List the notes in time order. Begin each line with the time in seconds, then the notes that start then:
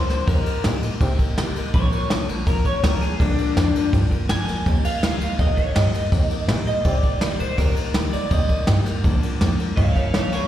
Already playing: C5
0.08 F3 A#3 D4 A#4, muted upright bass stroke, snare, ride
0.26 D#2 D#3 G3 A#3 D#4 A#4, kick, ride
0.45 A#3 D#4 A#4, muted upright bass stroke, ride
0.63 A#2 D#3 G3 A#3 D#4 A#4, snare, ride
0.82 A#3 D#4 A#4, muted upright bass stroke, ride
0.99 C3 G3 A#3 D#4 A#4, kick, ride
1.18 A#3 D#4 A#4, muted upright bass stroke, kick, ride
1.36 C3 D#3 G3 A#3 D#4 A#4, snare, ride
1.55 A1 A#3 D#4 A#4, ride
1.73 A#1 A#2 D3 F3 A#3 D4 A#4 C#5, kick, ride
1.92 F3 A#3 D4 A#4, muted upright bass stroke, ride
2.09 A#1 A#2 D3 F3 A#3 D4 A#4, snare, ride
2.27 A#1 F3 A#3 D4 A#4, ride
2.46 A#1 F3 A#3 D4 A#4, kick, ride
2.64 F3 A#3 D4 A#4 C#5, muted upright bass stroke, kick, ride
2.83 D2 A#2 D3 F3 A#3 D4 A#4, snare, ride
3.01 F3 A#3 D4 G#4 A#4, muted upright bass stroke, ride
3.19 A#1 A#2 D3 F3 A#3 D4 A#4, kick, ride
3.38 F3 A#3 D4 A#4, ride
3.56 F2 A#2 D3 F3 A#3 D4 A#4, snare, ride
3.74 F3 A#3 D4 A#4, muted upright bass stroke, ride
3.93 G2 F3 A#3 D4 A#4, kick, ride
4.11 F3 A#3 D4 A#4, muted upright bass stroke, kick, ride
4.29 G2 A#2 D3 F3 A#3 D4 A#4 G#5, snare, ride
4.47 F3 A#3 D4 A#4, snare, ride
4.66 D#2 D#3 G3 A#3 D#4 A#4, kick, ride
4.83 A#3 D#4 A#4 F5, muted upright bass stroke, ride
5.02 D#2 D#3 G3 A#3 D#4 A#4 F5, snare, ride
5.20 D#2 A#3 D#4 A#4, ride
5.38 D#2 G3 A#3 D#4 A#4 D#5, kick, ride
5.56 A#3 D#4 A#4 C#5, muted upright bass stroke, kick, ride
5.75 G2 D#3 G3 A#3 D#4 A#4 D#5, snare, ride
5.93 A#3 D#4 A#4, muted upright bass stroke, snare, ride
6.11 D#2 D#3 G3 A#3 D#4 A#4, kick, ride
6.30 A#3 D#4 A#4, muted upright bass stroke, ride
6.48 A#2 D#3 G3 A#3 D#4 A#4, snare, ride
6.66 A#3 D#4 A#4 D#5, muted upright bass stroke, ride
6.84 C3 G3 A#3 D#4 A#4 D5, kick, ride
7.03 A#3 D#4 A#4, kick, ride
7.21 C3 D#3 G3 A#3 D#4 A#4, snare, ride
7.39 A#2 A#3 D#4 A#4 C5, ride
7.57 D#2 D#3 G3 A#3 D#4 A#4, kick, ride
7.75 A#3 D#4 A#4, muted upright bass stroke, ride
7.94 D#2 D#3 G3 A#3 D#4 A#4, snare, ride
8.12 D#2 A#3 D#4 A#4 D5, ride
8.30 D#2 G3 A#3 D#4 A#4 D#5, kick, ride
8.49 A#3 D#4 A#4, muted upright bass stroke, kick, ride
8.67 G2 D#3 G3 A#3 D#4 A#4, snare, ride
8.85 A#3 D#4 A#4, muted upright bass stroke, snare, ride
9.04 A#1 A#2 D3 F3 A#3 D4 A#4, kick, ride
9.22 F3 A#3 D4 A#4, muted upright bass stroke, ride
9.40 F2 A#2 D3 F3 A#3 D4 A#4, snare, ride
9.58 F3 A#3 D4 A#4, muted upright bass stroke, ride
9.76 G2 F3 A#3 D4 A#4 C#5 F5, kick, ride
9.94 F3 A#3 D4 A#4 C#5 F5, kick, ride
10.13 G2 A#2 D3 F3 A#3 D4 A#4 C#5 F5, snare, ride
10.32 D#2 F3 A#3 D4 G#4 A#4 C#5, ride